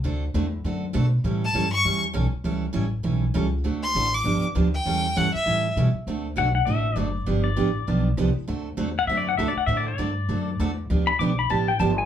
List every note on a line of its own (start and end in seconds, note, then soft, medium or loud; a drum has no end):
0.04 0.34 D2 medium
0.04 0.24 D3 medium
0.04 0.24 A3 medium
0.04 0.24 C4 medium
0.04 0.24 F#4 medium
0.04 0.24 A4 medium
0.34 0.63 E2 medium
0.34 0.45 D3 medium
0.34 0.45 A3 medium
0.34 0.45 C4 medium
0.34 0.45 F#4 medium
0.34 0.45 A4 medium
0.64 0.93 F#2 medium
0.64 0.84 D3 medium
0.64 0.84 A3 soft
0.64 0.85 C4 medium
0.64 0.85 F#4 medium
0.64 0.85 A4 medium
0.93 1.23 B2 loud
0.93 1.05 D3 medium
0.93 1.05 A3 medium
0.93 1.05 C4 medium
0.93 1.05 F#4 medium
0.93 1.05 A4 medium
1.24 1.53 A2 medium
1.24 1.44 E3 medium
1.24 1.44 G3 medium
1.24 1.44 C#4 medium
1.24 1.45 E4 medium
1.24 1.45 A4 medium
1.45 1.72 A5 loud
1.54 1.84 G2 medium
1.54 1.65 E3 medium
1.54 1.65 G3 medium
1.54 1.65 C#4 medium
1.54 1.65 E4 medium
1.54 1.66 A4 medium
1.73 2.01 C#6 loud
1.84 2.14 E2 medium
1.84 2.04 E3 medium
1.84 2.04 G3 medium
1.84 2.04 C#4 medium
1.84 2.04 E4 medium
1.84 2.05 A4 medium
2.13 2.31 B1 loud
2.13 2.25 E3 medium
2.13 2.25 G3 medium
2.13 2.25 C#4 medium
2.13 2.25 E4 medium
2.13 2.25 A4 medium
2.32 muted upright bass stroke soft
2.44 2.74 C#2 medium
2.44 2.64 E3 medium
2.44 2.65 G3 medium
2.44 2.65 C#4 medium
2.44 2.65 E4 medium
2.44 2.65 A4 medium
2.73 3.04 A1 medium
2.73 2.85 E3 medium
2.73 2.85 G3 medium
2.73 2.85 C#4 medium
2.73 2.85 E4 medium
2.73 2.85 A4 medium
3.03 3.34 B1 medium
3.03 3.24 E3 medium
3.03 3.24 G3 medium
3.03 3.24 C#4 medium
3.03 3.24 E4 medium
3.03 3.24 A4 medium
3.34 3.64 C#2 medium
3.34 3.45 E3 medium
3.34 3.46 G3 medium
3.34 3.46 C#4 medium
3.34 3.46 E4 medium
3.34 3.46 A4 medium
3.64 3.94 D2 medium
3.64 3.84 D3 medium
3.64 3.85 A3 medium
3.64 3.85 C4 medium
3.64 3.85 F#4 medium
3.64 3.85 A4 medium
3.83 4.16 C6 loud
3.95 4.23 A1 medium
3.95 4.06 D3 medium
3.95 4.06 A3 medium
3.95 4.06 C4 medium
3.95 4.07 F#4 medium
3.95 4.07 A4 medium
4.14 4.44 D6 loud
4.24 4.41 G1 medium
4.24 4.45 D3 medium
4.24 4.45 F3 medium
4.24 4.45 B3 medium
4.24 4.45 D4 medium
4.24 4.45 G4 medium
4.42 muted upright bass stroke soft
4.55 4.85 D2 medium
4.55 4.66 D3 medium
4.55 4.66 F3 medium
4.55 4.66 B3 medium
4.55 4.67 D4 medium
4.55 4.67 G4 medium
4.74 5.19 G5 loud
4.86 5.15 E2 medium
4.86 5.05 E3 medium
4.86 5.06 G3 medium
4.86 5.06 C#4 medium
4.86 5.06 E4 medium
4.86 5.06 A4 medium
5.16 5.33 G2 medium
5.16 5.27 E3 medium
5.16 5.27 G3 medium
5.16 5.27 C#4 medium
5.16 5.27 E4 medium
5.16 5.27 A4 medium
5.16 5.34 F#5 medium
5.34 5.74 E5 loud
5.34 muted upright bass stroke soft
5.46 5.75 A2 medium
5.46 5.66 E3 medium
5.46 5.66 G3 medium
5.46 5.66 C#4 medium
5.46 5.66 E4 medium
5.46 5.66 A4 medium
5.76 5.93 B2 medium
5.76 5.88 E3 medium
5.76 5.88 G3 medium
5.76 5.88 C#4 medium
5.76 5.88 E4 medium
5.76 5.88 A4 medium
5.94 muted upright bass stroke soft
6.07 6.36 D2 medium
6.07 6.27 D3 medium
6.07 6.27 A3 medium
6.07 6.27 C4 medium
6.07 6.27 F#4 medium
6.07 6.27 A4 medium
6.36 6.66 B1 medium
6.36 6.47 D3 medium
6.36 6.47 A3 medium
6.36 6.47 C4 medium
6.36 6.48 F#4 medium
6.36 6.48 A4 medium
6.36 6.54 F#5 medium
6.55 6.67 F#5 medium
6.65 6.95 A1 medium
6.65 6.86 D3 medium
6.65 6.87 A3 medium
6.65 6.87 C4 medium
6.65 6.87 F#4 medium
6.65 6.87 A4 medium
6.65 6.96 E5 loud
6.96 7.26 F#1 medium
6.96 7.07 D3 medium
6.96 7.08 A3 medium
6.96 7.08 C4 medium
6.96 7.08 F#4 medium
6.96 7.08 A4 medium
6.96 7.42 D5 medium
7.26 7.56 G1 medium
7.26 7.46 D3 medium
7.26 7.46 F3 medium
7.26 7.47 B3 medium
7.26 7.47 D4 medium
7.26 7.47 G4 medium
7.44 8.03 D5 medium
7.56 7.87 A1 medium
7.56 7.68 D3 medium
7.56 7.68 F3 medium
7.56 7.68 B3 medium
7.56 7.68 D4 medium
7.56 7.68 G4 medium
7.87 8.17 B1 medium
7.87 8.07 D3 medium
7.87 8.07 F3 medium
7.87 8.07 B3 medium
7.87 8.07 D4 medium
7.87 8.08 G4 medium
8.17 8.34 C2 loud
8.17 8.28 D3 medium
8.17 8.29 F3 medium
8.17 8.29 B3 medium
8.17 8.29 D4 medium
8.17 8.29 G4 medium
8.36 muted upright bass stroke soft
8.48 8.76 D2 medium
8.48 8.67 D3 medium
8.48 8.67 A3 medium
8.48 8.68 C4 medium
8.48 8.68 F#4 medium
8.48 8.68 A4 medium
8.77 9.06 E2 medium
8.77 8.88 D3 medium
8.77 8.88 A3 medium
8.77 8.89 C4 medium
8.77 8.89 F#4 medium
8.77 8.89 A4 medium
8.99 9.07 F#5 medium
9.07 9.37 F#2 medium
9.07 9.28 D3 medium
9.07 9.28 A3 medium
9.07 9.29 C4 medium
9.07 9.28 F#4 medium
9.07 9.29 A4 medium
9.07 9.18 E5 medium
9.17 9.28 D5 medium
9.29 9.37 F#5 medium
9.37 9.55 D2 loud
9.37 9.49 D3 medium
9.37 9.50 A3 medium
9.37 9.50 C4 medium
9.37 9.50 F#4 medium
9.37 9.50 A4 medium
9.37 9.48 E5 medium
9.48 9.58 D5 medium
9.56 9.66 F#5 medium
9.56 muted upright bass stroke soft
9.66 9.97 A2 medium
9.66 9.88 D3 medium
9.66 9.88 A3 medium
9.66 9.88 C4 medium
9.66 9.88 F#4 medium
9.66 9.88 A4 medium
9.66 9.77 E5 medium
9.77 9.87 D5 medium
9.88 10.76 D5 medium
9.98 10.28 G2 medium
9.98 10.09 D3 medium
9.98 10.10 A3 medium
9.98 10.10 C4 medium
9.98 10.10 F#4 medium
9.98 10.10 A4 medium
10.29 10.58 F#2 medium
10.29 10.49 D3 medium
10.29 10.48 A3 medium
10.29 10.49 C4 medium
10.29 10.49 F#4 medium
10.29 10.49 A4 medium
10.59 10.88 E2 loud
10.59 10.70 D3 medium
10.59 10.70 A3 medium
10.59 10.70 C4 medium
10.59 10.71 F#4 medium
10.59 10.70 A4 medium
10.90 11.19 D2 medium
10.90 11.09 D3 medium
10.90 11.09 F3 medium
10.90 11.09 B3 medium
10.90 11.10 D4 medium
10.90 11.10 G4 medium
11.07 11.19 B5 medium
11.19 11.49 B1 medium
11.19 11.31 D3 medium
11.19 11.31 F3 medium
11.19 11.31 B3 medium
11.19 11.31 D4 medium
11.19 11.31 G4 medium
11.19 11.37 D6 medium
11.39 11.50 B5 medium
11.49 11.79 A1 medium
11.49 11.69 D3 medium
11.49 11.69 F3 medium
11.49 11.69 B3 medium
11.49 11.69 D4 medium
11.49 11.70 G4 medium
11.49 11.67 A5 medium
11.68 11.79 G5 medium
11.79 12.05 G1 loud
11.79 11.90 D3 medium
11.79 11.91 F3 medium
11.79 11.91 B3 medium
11.79 11.91 D4 loud
11.79 11.91 G4 medium
11.79 11.97 A5 medium
11.98 12.05 G#5 medium